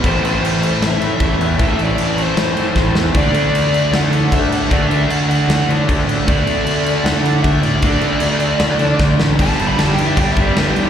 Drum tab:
CC |xxxxxxxx|xxxxxx--|xxxxxxxx|xxxxxxxx|
SD |----o---|----o-oo|----o---|----o---|
BD |o-----o-|o-----o-|o-----o-|o-----o-|

CC |xxxxxxxx|xxxxxx--|xxxxxxxx|
SD |----o---|----o-oo|--o---o-|
BD |o-----o-|o-----o-|o---oo--|